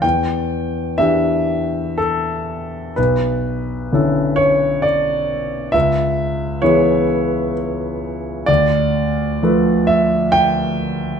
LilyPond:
\new Staff \with { instrumentName = "Grand piano" } { \time 3/4 \key d \dorian \tempo 4 = 65 << { g''4 e''4 a'4 | b'4. cis''8 d''4 | e''4 cis''4 r4 | d''4. e''8 g''4 | } \\ { e,4 <e d' e' g'>2 | b,,4 <d cis' e' a'>2 | cis,4 <e b e' gis'>2 | d,4 <f a a' b'>2 | } >> }